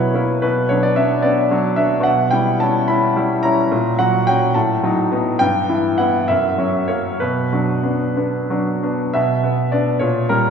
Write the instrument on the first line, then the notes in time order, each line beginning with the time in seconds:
grand piano
Already playing: B2 F#3 E4 B4 C#5
0.14 A#3 E4
0.42 B2 B4
0.69 F#3 D4 C#5
0.83 D5
0.96 B3 D4 E5
1.22 B3 D4 D5
1.51 F#3 D4
1.76 B3 D4 E5
2.00 B2 F#5
2.31 G3 E4 G5
2.60 C#4 E4 A5
2.88 C#4 E4 B5
3.16 G3 E4
3.43 C#4 E4 A#5
3.71 A#2
3.99 F#3 F#4 F#5
4.27 C#4 F#4 G5
4.54 A2 A5
4.83 F#3 D#4
5.12 B3 D#4
5.39 G2 G5
5.69 E3 E4
5.98 B3 E4 F#5
6.28 F#2 E5
6.58 F#3 C#4
6.88 A#3 C#4 C#5
7.20 B2 B4
7.53 F#3 D4
7.84 B3 D4
8.17 B3 D4
8.50 F#3 D4
8.83 B3 D4
9.13 B2 E5
9.44 B3
9.72 B3 D4 D5
9.99 A#2 C#5
10.29 G3 A#4